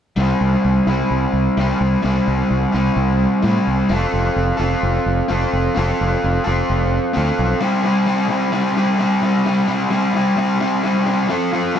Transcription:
0.16 0.32 C2 medium
0.16 0.91 G3 medium
0.16 0.89 C4 medium
0.16 0.87 E4 medium
0.41 0.55 C2 medium
0.65 0.79 C2 medium
0.87 1.01 C2 medium
0.87 1.59 C4 medium
0.87 1.56 E4 medium
0.91 1.57 G3 medium
1.11 1.25 C2 medium
1.33 1.48 C2 medium
1.57 1.71 C2 medium
1.57 2.02 G3 medium
1.57 2.04 C4 medium
1.57 2.04 E4 medium
1.81 1.95 C2 medium
2.02 2.19 C2 medium
2.02 2.75 G3 medium
2.02 2.74 C4 medium
2.02 2.71 E4 medium
2.28 2.42 C2 medium
2.51 2.65 C2 medium
2.72 2.88 C2 medium
2.72 3.42 G3 medium
2.72 3.44 C4 medium
2.72 3.41 E4 medium
2.97 3.25 C2 medium
3.42 3.58 A2 medium
3.42 3.94 G3 medium
3.42 3.89 C4 medium
3.42 3.90 E4 medium
3.67 3.81 C2 medium
3.89 4.04 F1 medium
3.89 4.60 C4 medium
3.89 4.59 F4 medium
3.89 4.57 A4 medium
4.14 4.28 F1 medium
4.36 4.51 F1 medium
4.57 4.74 F1 medium
4.57 5.28 C4 medium
4.57 5.28 F4 medium
4.57 5.26 A4 medium
4.83 4.97 F1 medium
5.06 5.20 F1 medium
5.28 5.44 F1 medium
5.28 5.74 C4 medium
5.28 5.74 F4 medium
5.28 5.75 A4 medium
5.53 5.67 F1 medium
5.75 5.91 F1 medium
5.75 6.43 C4 medium
5.75 6.44 F4 medium
5.75 6.43 A4 medium
6.01 6.15 F1 medium
6.24 6.38 F1 medium
6.44 6.61 F1 medium
6.44 7.12 C4 medium
6.44 7.14 F4 medium
6.44 7.13 A4 medium
6.70 6.98 F1 medium
7.13 7.30 D2 medium
7.13 7.59 C4 medium
7.13 7.60 F4 medium
7.13 7.61 A4 medium
7.39 7.53 B1 medium
7.61 7.83 G3 medium
7.61 7.84 C4 medium
7.61 7.84 E4 medium
7.61 7.85 G4 medium
7.83 8.06 G3 medium
7.83 8.07 C4 medium
7.83 8.07 E4 medium
7.83 8.07 G4 medium
8.06 8.28 G3 medium
8.06 8.29 C4 medium
8.06 8.30 E4 medium
8.06 8.30 G4 medium
8.29 8.52 G3 medium
8.29 8.52 C4 medium
8.29 8.53 E4 medium
8.29 8.54 G4 medium
8.52 8.75 G3 medium
8.52 8.76 C4 medium
8.52 8.76 E4 medium
8.52 8.77 G4 loud
8.75 8.99 G3 medium
8.75 8.99 C4 medium
8.75 8.99 E4 medium
8.75 9.00 G4 medium
8.99 9.21 G3 medium
8.99 9.22 C4 medium
8.99 9.22 E4 medium
8.99 9.23 G4 medium
9.21 9.45 G3 medium
9.21 9.45 C4 medium
9.21 9.45 E4 medium
9.21 9.47 G4 medium
9.45 9.67 G3 medium
9.45 9.68 C4 medium
9.45 9.67 E4 medium
9.45 9.69 G4 medium
9.68 9.90 G3 medium
9.68 9.91 C4 medium
9.68 9.91 E4 medium
9.68 9.92 G4 medium
9.90 10.14 G3 medium
9.90 10.14 C4 medium
9.90 10.15 E4 medium
9.90 10.16 G4 loud
10.14 10.36 G3 medium
10.14 10.37 C4 medium
10.14 10.36 E4 medium
10.14 10.38 G4 medium
10.36 10.60 G3 medium
10.36 10.60 C4 medium
10.36 10.60 E4 loud
10.36 10.61 G4 loud
10.60 10.83 G3 medium
10.60 10.83 C4 medium
10.60 10.83 E4 medium
10.60 10.85 G4 medium
10.83 11.05 G3 medium
10.83 11.06 C4 medium
10.83 11.06 E4 medium
10.83 11.07 G4 medium
11.06 11.28 G3 medium
11.06 11.29 C4 medium
11.06 11.29 E4 medium
11.06 11.30 G4 medium
11.28 11.51 F3 medium
11.28 11.52 C4 medium
11.28 11.52 F4 medium
11.28 11.53 A4 medium
11.52 11.75 F3 medium
11.52 11.76 C4 medium
11.52 11.76 F4 medium
11.52 11.76 A4 medium
11.75 11.79 F3 medium
11.75 11.79 C4 medium
11.75 11.79 F4 loud

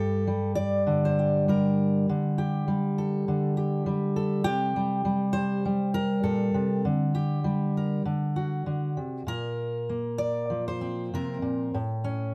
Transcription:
0.00 2.06 G2 medium
0.00 0.27 G3 soft
0.00 1.18 G4 soft
0.00 0.55 A4 loud
0.27 1.48 G3 medium
0.55 1.61 D5 loud
0.87 2.06 D3 medium
1.05 1.48 C5 medium
1.19 2.38 G4 soft
1.48 2.67 G3 medium
1.48 2.07 A#4 medium
2.09 3.26 D3 medium
2.38 3.57 G4 medium
2.68 3.86 G3 medium
2.98 4.15 A4 medium
3.28 4.45 D3 medium
3.57 4.44 G4 medium
3.86 4.74 G3 medium
4.16 4.41 A4 medium
4.44 6.23 C3 medium
4.44 5.63 G4 loud
4.76 5.04 G3 soft
5.05 5.64 G3 medium
5.33 5.92 C5 loud
5.65 6.81 G3 medium
5.94 6.84 A#4 medium
6.23 6.53 A#2 medium
6.23 6.84 A4 medium
6.54 6.84 C3 medium
6.85 8.04 D3 medium
7.15 8.01 G4 medium
7.44 8.04 G3 medium
7.77 8.02 A#4 medium
8.05 8.65 D3 medium
8.36 9.24 F#4 medium
8.66 8.97 D3 medium
8.97 9.26 C3 medium
9.27 11.12 A#2 medium
9.27 10.51 A#4 loud
9.89 11.70 A#3 medium
10.18 10.65 D5 loud
10.50 11.70 F3 medium
10.68 11.74 C5 medium
10.81 11.73 C4 soft
11.14 11.42 C3 medium
11.14 11.75 A#4 medium
11.42 11.73 A#2 medium
11.74 12.34 A2 medium
12.04 12.34 C#4 medium

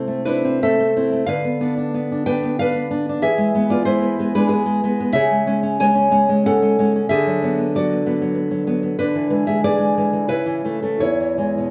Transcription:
0.00 1.22 C3 medium
0.00 0.24 C4 medium
0.00 0.24 E4 soft
0.00 0.20 A4 medium
0.08 0.62 A3 soft
0.25 0.43 C4 soft
0.25 0.58 D4 medium
0.25 0.62 E4 medium
0.25 0.58 B4 medium
0.44 0.78 C4 medium
0.63 1.11 A3 medium
0.63 1.23 A4 medium
0.63 1.25 E5 medium
0.79 0.95 C4 soft
0.97 1.24 C4 medium
0.97 1.24 E4 medium
1.12 1.27 A3 medium
1.26 3.19 D3 medium
1.26 2.22 B4 medium
1.26 2.21 F5 loud
1.45 1.59 B3 medium
1.61 1.93 B3 medium
1.61 1.76 D4 medium
1.77 2.11 D4 soft
1.94 2.25 B3 medium
2.12 2.25 D4 medium
2.26 2.42 B3 soft
2.26 2.59 D4 medium
2.26 2.55 B4 medium
2.26 2.56 G5 loud
2.43 2.75 B3 medium
2.59 2.90 D4 medium
2.59 3.20 B4 medium
2.59 3.20 F5 loud
2.76 2.89 B3 medium
2.91 3.19 B3 medium
2.91 3.08 D4 medium
3.09 3.24 D4 medium
3.22 5.11 E3 medium
3.22 3.67 G#4 medium
3.22 3.68 E5 loud
3.38 3.53 G#3 medium
3.55 3.85 G#3 medium
3.55 3.69 B3 medium
3.70 4.00 B3 medium
3.70 3.86 F4 medium
3.70 3.85 D5 medium
3.85 4.18 G#3 medium
3.85 4.31 E4 medium
3.85 4.32 C5 loud
4.01 4.19 B3 medium
4.19 4.34 G#3 medium
4.19 4.49 B3 medium
4.35 4.65 G#3 medium
4.35 4.50 D4 medium
4.35 4.49 B4 loud
4.49 4.80 B3 medium
4.49 4.80 G#4 medium
4.66 4.82 G#3 medium
4.84 5.12 G#3 medium
4.84 4.99 B3 medium
5.00 5.15 B3 medium
5.13 7.04 C#3 medium
5.13 5.75 G#4 medium
5.13 5.76 E5 loud
5.31 5.45 G#3 medium
5.46 5.80 G#3 medium
5.46 5.62 C#4 medium
5.63 5.94 C#4 medium
5.80 6.10 G#3 medium
5.80 6.41 C#5 medium
5.80 6.42 G#5 loud
5.95 6.11 C#4 medium
6.11 6.28 G#3 medium
6.11 6.45 C#4 medium
6.29 6.61 G#3 medium
6.46 6.79 C#4 medium
6.46 7.05 A4 medium
6.46 7.07 F#5 loud
6.62 6.78 G#3 medium
6.79 7.07 G#3 medium
6.79 6.95 C#4 medium
6.96 7.10 C#4 medium
7.09 8.96 D3 medium
7.09 7.70 G#4 medium
7.09 7.70 E5 loud
7.27 7.41 F#3 medium
7.43 7.74 F#3 medium
7.43 7.57 B3 medium
7.59 7.91 B3 medium
7.75 8.05 F#3 medium
7.75 8.64 F#4 medium
7.75 8.65 D5 loud
7.92 8.05 B3 medium
8.06 8.20 F#3 medium
8.06 8.33 B3 medium
8.22 8.50 F#3 medium
8.34 8.66 B3 medium
8.51 8.66 F#3 medium
8.67 8.95 F#3 medium
8.67 8.82 B3 medium
8.83 8.98 B3 medium
8.99 10.26 D3 medium
8.99 9.44 D4 medium
8.99 9.45 B4 loud
9.15 9.29 E3 medium
9.30 9.63 E3 medium
9.30 9.46 G#3 medium
9.47 9.78 G#3 medium
9.47 9.63 G#4 medium
9.47 9.63 E5 medium
9.64 9.96 E3 medium
9.64 10.26 G#4 medium
9.64 10.28 D5 loud
9.79 9.96 G#3 medium
9.97 10.12 E3 medium
9.97 10.27 G#3 medium
10.13 10.28 E3 medium
10.28 10.98 C#3 medium
10.28 10.79 E4 medium
10.28 10.80 B4 loud
10.46 10.63 E3 medium
10.65 10.98 E3 soft
10.65 10.82 A3 medium
10.82 11.02 A3 medium
10.82 11.01 C#4 medium
10.82 11.01 A4 medium
11.00 11.71 E2 medium
11.00 11.71 E4 medium
11.00 11.71 C#5 medium
11.20 11.37 E3 medium
11.38 11.58 E3 soft
11.38 11.71 G#3 medium
11.58 11.71 B2 soft

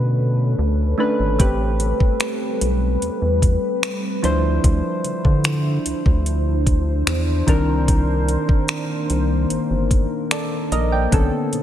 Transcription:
0.00 0.55 B2 medium
0.00 1.36 D3 medium
0.00 0.98 A3 medium
0.00 0.99 C#4 medium
0.00 0.99 D4 medium
0.00 4.19 A4 medium
0.00 1.00 B4 medium
0.00 1.36 B4 medium
0.00 1.36 C#5 medium
0.59 0.94 D2 loud
0.98 1.23 A3 medium
0.98 1.24 C#4 medium
0.98 1.24 D4 medium
0.98 1.25 B4 medium
1.20 1.37 G#1 loud
1.39 1.93 A1 medium
1.39 4.21 G3 medium
1.39 2.39 A3 medium
1.39 2.40 C4 medium
1.39 4.21 C4 medium
1.39 2.40 G4 medium
1.39 4.21 B4 medium
1.39 2.40 B4 medium
1.39 kick loud
1.39 closed hi-hat medium
1.80 closed hi-hat medium
2.00 kick medium
2.20 finger snap medium
2.20 closed hi-hat medium
2.61 2.97 B1 medium
2.61 closed hi-hat medium
3.02 3.10 E2 soft
3.02 closed hi-hat medium
3.22 3.58 E2 medium
3.42 kick medium
3.42 closed hi-hat medium
3.83 finger snap loud
3.83 closed hi-hat medium
4.22 4.59 D2 medium
4.22 7.44 D3 medium
4.22 5.53 F3 medium
4.22 11.08 D4 medium
4.22 5.53 D4 medium
4.22 7.44 E4 medium
4.22 5.53 E4 medium
4.22 11.08 C5 medium
4.22 5.54 C5 loud
4.22 closed hi-hat medium
4.64 4.82 D2 loud
4.64 kick loud
4.64 closed hi-hat medium
5.05 5.13 D3 soft
5.05 closed hi-hat medium
5.25 5.78 D3 medium
5.25 kick medium
5.44 finger snap loud
5.44 closed hi-hat medium
5.86 5.94 D2 soft
5.86 closed hi-hat medium
6.06 7.03 D2 medium
6.06 kick medium
6.26 closed hi-hat medium
6.67 kick medium
6.67 closed hi-hat medium
7.07 7.43 E2 loud
7.07 finger snap loud
7.07 closed hi-hat medium
7.47 8.37 C2 loud
7.47 8.77 D#3 medium
7.47 11.09 D#3 medium
7.47 11.09 A#3 medium
7.47 8.77 C4 medium
7.47 8.78 D4 medium
7.47 8.78 A#4 loud
7.47 kick medium
7.47 closed hi-hat medium
7.88 kick loud
7.88 closed hi-hat medium
8.28 closed hi-hat medium
8.49 kick medium
8.68 finger snap medium
8.68 closed hi-hat medium
9.10 9.46 C2 medium
9.10 closed hi-hat medium
9.50 9.58 G1 soft
9.50 closed hi-hat medium
9.70 10.06 G1 medium
9.91 kick medium
9.91 closed hi-hat medium
10.31 10.70 A4 medium
10.31 10.70 D5 medium
10.31 finger snap loud
10.31 closed hi-hat medium
10.72 11.07 A#1 loud
10.72 10.92 A#4 medium
10.72 10.91 D#5 medium
10.72 closed hi-hat medium
10.92 11.31 D5 soft
10.92 11.31 G5 medium
11.11 11.30 B1 loud
11.11 11.63 D3 medium
11.11 11.63 B3 medium
11.11 11.63 C#4 medium
11.11 11.63 A4 medium
11.11 11.63 B4 medium
11.11 kick loud
11.11 closed hi-hat medium
11.53 11.61 B2 soft
11.53 closed hi-hat medium

